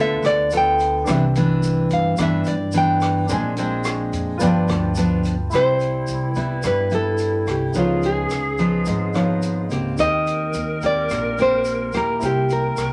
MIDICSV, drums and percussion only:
0, 0, Header, 1, 2, 480
1, 0, Start_track
1, 0, Tempo, 557103
1, 920, Time_signature, 4, 2, 24, 8
1, 11139, End_track
2, 0, Start_track
2, 0, Title_t, "Drums"
2, 198, Note_on_c, 9, 82, 25
2, 213, Note_on_c, 9, 37, 63
2, 213, Note_on_c, 9, 42, 45
2, 285, Note_off_c, 9, 82, 0
2, 299, Note_off_c, 9, 37, 0
2, 299, Note_off_c, 9, 42, 0
2, 436, Note_on_c, 9, 82, 64
2, 451, Note_on_c, 9, 42, 42
2, 522, Note_off_c, 9, 82, 0
2, 537, Note_off_c, 9, 42, 0
2, 677, Note_on_c, 9, 82, 24
2, 690, Note_on_c, 9, 42, 39
2, 764, Note_off_c, 9, 82, 0
2, 776, Note_off_c, 9, 42, 0
2, 918, Note_on_c, 9, 82, 70
2, 926, Note_on_c, 9, 36, 59
2, 926, Note_on_c, 9, 37, 63
2, 926, Note_on_c, 9, 42, 59
2, 1005, Note_off_c, 9, 82, 0
2, 1012, Note_off_c, 9, 37, 0
2, 1012, Note_off_c, 9, 42, 0
2, 1013, Note_off_c, 9, 36, 0
2, 1167, Note_on_c, 9, 42, 47
2, 1168, Note_on_c, 9, 82, 26
2, 1253, Note_off_c, 9, 42, 0
2, 1254, Note_off_c, 9, 82, 0
2, 1404, Note_on_c, 9, 82, 65
2, 1406, Note_on_c, 9, 42, 43
2, 1490, Note_off_c, 9, 82, 0
2, 1493, Note_off_c, 9, 42, 0
2, 1637, Note_on_c, 9, 82, 29
2, 1642, Note_on_c, 9, 42, 42
2, 1644, Note_on_c, 9, 36, 48
2, 1723, Note_off_c, 9, 82, 0
2, 1728, Note_off_c, 9, 42, 0
2, 1730, Note_off_c, 9, 36, 0
2, 1871, Note_on_c, 9, 82, 69
2, 1881, Note_on_c, 9, 37, 54
2, 1881, Note_on_c, 9, 42, 53
2, 1882, Note_on_c, 9, 36, 56
2, 1957, Note_off_c, 9, 82, 0
2, 1967, Note_off_c, 9, 37, 0
2, 1967, Note_off_c, 9, 42, 0
2, 1969, Note_off_c, 9, 36, 0
2, 2108, Note_on_c, 9, 82, 27
2, 2124, Note_on_c, 9, 42, 40
2, 2194, Note_off_c, 9, 82, 0
2, 2210, Note_off_c, 9, 42, 0
2, 2343, Note_on_c, 9, 82, 63
2, 2364, Note_on_c, 9, 42, 39
2, 2430, Note_off_c, 9, 82, 0
2, 2450, Note_off_c, 9, 42, 0
2, 2590, Note_on_c, 9, 82, 29
2, 2600, Note_on_c, 9, 37, 55
2, 2600, Note_on_c, 9, 42, 41
2, 2676, Note_off_c, 9, 82, 0
2, 2686, Note_off_c, 9, 37, 0
2, 2686, Note_off_c, 9, 42, 0
2, 2832, Note_on_c, 9, 82, 68
2, 2838, Note_on_c, 9, 42, 53
2, 2840, Note_on_c, 9, 36, 61
2, 2918, Note_off_c, 9, 82, 0
2, 2924, Note_off_c, 9, 42, 0
2, 2927, Note_off_c, 9, 36, 0
2, 3073, Note_on_c, 9, 42, 44
2, 3078, Note_on_c, 9, 82, 27
2, 3159, Note_off_c, 9, 42, 0
2, 3164, Note_off_c, 9, 82, 0
2, 3309, Note_on_c, 9, 82, 66
2, 3317, Note_on_c, 9, 37, 60
2, 3317, Note_on_c, 9, 42, 37
2, 3395, Note_off_c, 9, 82, 0
2, 3403, Note_off_c, 9, 37, 0
2, 3403, Note_off_c, 9, 42, 0
2, 3558, Note_on_c, 9, 82, 32
2, 3559, Note_on_c, 9, 42, 40
2, 3644, Note_off_c, 9, 82, 0
2, 3645, Note_off_c, 9, 42, 0
2, 3791, Note_on_c, 9, 82, 69
2, 3801, Note_on_c, 9, 36, 58
2, 3804, Note_on_c, 9, 42, 54
2, 3877, Note_off_c, 9, 82, 0
2, 3887, Note_off_c, 9, 36, 0
2, 3890, Note_off_c, 9, 42, 0
2, 4031, Note_on_c, 9, 82, 24
2, 4044, Note_on_c, 9, 37, 64
2, 4044, Note_on_c, 9, 42, 45
2, 4117, Note_off_c, 9, 82, 0
2, 4130, Note_off_c, 9, 37, 0
2, 4130, Note_off_c, 9, 42, 0
2, 4265, Note_on_c, 9, 82, 63
2, 4282, Note_on_c, 9, 42, 44
2, 4351, Note_off_c, 9, 82, 0
2, 4368, Note_off_c, 9, 42, 0
2, 4514, Note_on_c, 9, 82, 26
2, 4525, Note_on_c, 9, 42, 47
2, 4600, Note_off_c, 9, 82, 0
2, 4611, Note_off_c, 9, 42, 0
2, 4747, Note_on_c, 9, 82, 51
2, 4765, Note_on_c, 9, 36, 51
2, 4770, Note_on_c, 9, 37, 51
2, 4770, Note_on_c, 9, 42, 48
2, 4833, Note_off_c, 9, 82, 0
2, 4851, Note_off_c, 9, 36, 0
2, 4856, Note_off_c, 9, 37, 0
2, 4856, Note_off_c, 9, 42, 0
2, 4993, Note_on_c, 9, 82, 26
2, 5006, Note_on_c, 9, 42, 37
2, 5079, Note_off_c, 9, 82, 0
2, 5092, Note_off_c, 9, 42, 0
2, 5232, Note_on_c, 9, 82, 54
2, 5241, Note_on_c, 9, 42, 33
2, 5318, Note_off_c, 9, 82, 0
2, 5327, Note_off_c, 9, 42, 0
2, 5469, Note_on_c, 9, 82, 25
2, 5483, Note_on_c, 9, 36, 49
2, 5485, Note_on_c, 9, 42, 35
2, 5556, Note_off_c, 9, 82, 0
2, 5569, Note_off_c, 9, 36, 0
2, 5571, Note_off_c, 9, 42, 0
2, 5711, Note_on_c, 9, 82, 61
2, 5719, Note_on_c, 9, 37, 48
2, 5719, Note_on_c, 9, 42, 44
2, 5722, Note_on_c, 9, 36, 45
2, 5797, Note_off_c, 9, 82, 0
2, 5805, Note_off_c, 9, 37, 0
2, 5805, Note_off_c, 9, 42, 0
2, 5808, Note_off_c, 9, 36, 0
2, 5948, Note_on_c, 9, 82, 23
2, 5966, Note_on_c, 9, 42, 32
2, 6034, Note_off_c, 9, 82, 0
2, 6052, Note_off_c, 9, 42, 0
2, 6185, Note_on_c, 9, 82, 58
2, 6203, Note_on_c, 9, 42, 34
2, 6271, Note_off_c, 9, 82, 0
2, 6289, Note_off_c, 9, 42, 0
2, 6434, Note_on_c, 9, 82, 26
2, 6441, Note_on_c, 9, 37, 51
2, 6441, Note_on_c, 9, 42, 35
2, 6520, Note_off_c, 9, 82, 0
2, 6527, Note_off_c, 9, 37, 0
2, 6527, Note_off_c, 9, 42, 0
2, 6666, Note_on_c, 9, 82, 59
2, 6681, Note_on_c, 9, 36, 52
2, 6681, Note_on_c, 9, 42, 43
2, 6752, Note_off_c, 9, 82, 0
2, 6767, Note_off_c, 9, 36, 0
2, 6767, Note_off_c, 9, 42, 0
2, 6911, Note_on_c, 9, 82, 25
2, 6919, Note_on_c, 9, 42, 41
2, 6997, Note_off_c, 9, 82, 0
2, 7005, Note_off_c, 9, 42, 0
2, 7151, Note_on_c, 9, 82, 55
2, 7158, Note_on_c, 9, 37, 49
2, 7158, Note_on_c, 9, 42, 35
2, 7237, Note_off_c, 9, 82, 0
2, 7244, Note_off_c, 9, 37, 0
2, 7244, Note_off_c, 9, 42, 0
2, 7392, Note_on_c, 9, 82, 24
2, 7401, Note_on_c, 9, 36, 38
2, 7401, Note_on_c, 9, 42, 38
2, 7478, Note_off_c, 9, 82, 0
2, 7487, Note_off_c, 9, 36, 0
2, 7488, Note_off_c, 9, 42, 0
2, 7630, Note_on_c, 9, 82, 59
2, 7641, Note_on_c, 9, 42, 50
2, 7642, Note_on_c, 9, 36, 44
2, 7716, Note_off_c, 9, 82, 0
2, 7728, Note_off_c, 9, 36, 0
2, 7728, Note_off_c, 9, 42, 0
2, 7874, Note_on_c, 9, 82, 20
2, 7885, Note_on_c, 9, 37, 49
2, 7885, Note_on_c, 9, 42, 39
2, 7960, Note_off_c, 9, 82, 0
2, 7972, Note_off_c, 9, 37, 0
2, 7972, Note_off_c, 9, 42, 0
2, 8119, Note_on_c, 9, 82, 49
2, 8122, Note_on_c, 9, 42, 39
2, 8205, Note_off_c, 9, 82, 0
2, 8209, Note_off_c, 9, 42, 0
2, 8358, Note_on_c, 9, 82, 25
2, 8369, Note_on_c, 9, 42, 39
2, 8444, Note_off_c, 9, 82, 0
2, 8455, Note_off_c, 9, 42, 0
2, 8596, Note_on_c, 9, 82, 59
2, 8604, Note_on_c, 9, 36, 49
2, 8606, Note_on_c, 9, 37, 48
2, 8606, Note_on_c, 9, 42, 52
2, 8682, Note_off_c, 9, 82, 0
2, 8691, Note_off_c, 9, 36, 0
2, 8693, Note_off_c, 9, 37, 0
2, 8693, Note_off_c, 9, 42, 0
2, 8845, Note_on_c, 9, 82, 25
2, 8849, Note_on_c, 9, 42, 43
2, 8931, Note_off_c, 9, 82, 0
2, 8936, Note_off_c, 9, 42, 0
2, 9077, Note_on_c, 9, 82, 58
2, 9087, Note_on_c, 9, 42, 36
2, 9163, Note_off_c, 9, 82, 0
2, 9173, Note_off_c, 9, 42, 0
2, 9320, Note_on_c, 9, 82, 25
2, 9327, Note_on_c, 9, 36, 44
2, 9329, Note_on_c, 9, 42, 37
2, 9406, Note_off_c, 9, 82, 0
2, 9413, Note_off_c, 9, 36, 0
2, 9416, Note_off_c, 9, 42, 0
2, 9559, Note_on_c, 9, 82, 55
2, 9568, Note_on_c, 9, 36, 45
2, 9571, Note_on_c, 9, 37, 43
2, 9571, Note_on_c, 9, 42, 49
2, 9645, Note_off_c, 9, 82, 0
2, 9655, Note_off_c, 9, 36, 0
2, 9657, Note_off_c, 9, 37, 0
2, 9657, Note_off_c, 9, 42, 0
2, 9803, Note_on_c, 9, 82, 23
2, 9810, Note_on_c, 9, 42, 31
2, 9889, Note_off_c, 9, 82, 0
2, 9896, Note_off_c, 9, 42, 0
2, 10034, Note_on_c, 9, 82, 55
2, 10050, Note_on_c, 9, 42, 35
2, 10120, Note_off_c, 9, 82, 0
2, 10136, Note_off_c, 9, 42, 0
2, 10273, Note_on_c, 9, 82, 22
2, 10290, Note_on_c, 9, 37, 50
2, 10290, Note_on_c, 9, 42, 38
2, 10359, Note_off_c, 9, 82, 0
2, 10376, Note_off_c, 9, 37, 0
2, 10376, Note_off_c, 9, 42, 0
2, 10521, Note_on_c, 9, 82, 53
2, 10531, Note_on_c, 9, 36, 52
2, 10533, Note_on_c, 9, 42, 46
2, 10607, Note_off_c, 9, 82, 0
2, 10617, Note_off_c, 9, 36, 0
2, 10619, Note_off_c, 9, 42, 0
2, 10764, Note_on_c, 9, 82, 27
2, 10773, Note_on_c, 9, 42, 38
2, 10850, Note_off_c, 9, 82, 0
2, 10859, Note_off_c, 9, 42, 0
2, 11001, Note_on_c, 9, 82, 56
2, 11011, Note_on_c, 9, 37, 49
2, 11011, Note_on_c, 9, 42, 29
2, 11088, Note_off_c, 9, 82, 0
2, 11097, Note_off_c, 9, 37, 0
2, 11097, Note_off_c, 9, 42, 0
2, 11139, End_track
0, 0, End_of_file